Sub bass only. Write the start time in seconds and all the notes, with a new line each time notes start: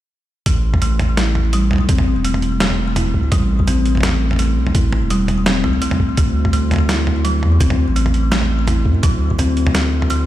0.46 A1
1.71 B1
1.89 A1
2.17 E1
3.14 D2
3.32 A1
4.57 B1
4.75 A1
5.02 E1
5.64 C2
6.18 D2
7.42 E2
7.61 D2
7.88 A1
8.86 F#2
9.03 D2